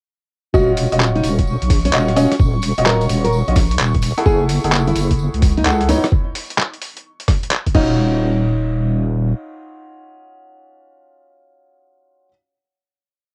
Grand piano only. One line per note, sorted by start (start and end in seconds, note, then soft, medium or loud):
0.54 0.86 C#4 loud
0.54 0.86 F4 medium
0.54 0.86 F#4 medium
0.54 0.86 D#5 loud
0.92 1.91 C#4 medium
0.92 1.91 F4 medium
0.92 1.91 F#4 medium
0.92 1.91 D#5 medium
1.93 2.15 C#4 loud
1.93 2.15 F4 medium
1.93 2.15 F#4 medium
1.93 2.15 D#5 loud
2.16 2.31 C#4 loud
2.16 2.31 F4 medium
2.16 2.31 F#4 medium
2.16 2.31 D#5 loud
2.78 3.44 C#4 medium
2.78 3.44 F4 medium
2.78 3.44 F#4 medium
2.78 3.44 D#5 loud
3.48 3.56 C#4 medium
3.48 3.56 F4 medium
3.48 3.56 F#4 medium
3.48 3.56 D#5 medium
4.18 4.61 E4 loud
4.18 4.61 G#4 medium
4.18 4.61 A4 medium
4.18 4.61 F#5 loud
4.64 5.63 E4 medium
4.64 5.63 G#4 medium
4.64 5.63 A4 medium
4.64 5.63 F#5 medium
5.65 5.87 E4 loud
5.65 5.87 G#4 medium
5.65 5.87 A4 medium
5.65 5.87 F#5 loud
5.89 6.03 B3 loud
5.89 6.03 D#4 medium
5.89 6.03 E4 medium
5.89 6.03 C#5 loud
7.75 12.28 C#4 medium
7.75 12.28 F4 medium
7.75 12.28 F#4 medium
7.75 12.28 D#5 medium